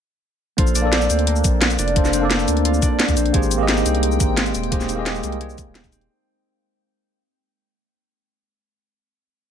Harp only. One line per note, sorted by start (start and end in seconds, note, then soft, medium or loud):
0.58 1.61 F4 medium
0.75 1.79 D4 medium
1.10 2.13 C4 medium
1.27 2.30 A#3 medium
1.62 2.65 F4 medium
1.79 2.82 D4 medium
2.13 3.16 C4 medium
2.31 4.20 A#3 medium
2.65 5.17 F4 medium
2.82 3.74 D4 medium
3.17 3.85 C4 medium
3.34 4.36 G#3 medium
3.68 4.72 D#4 medium
3.86 4.89 C4 medium
4.20 5.23 A#3 medium
4.37 5.40 G#3 medium
4.72 5.75 D#4 medium
4.89 5.92 C4 medium
5.24 8.45 A#3 medium
5.41 6.15 G#3 medium
5.75 8.46 D#4 medium
5.93 8.93 C4 medium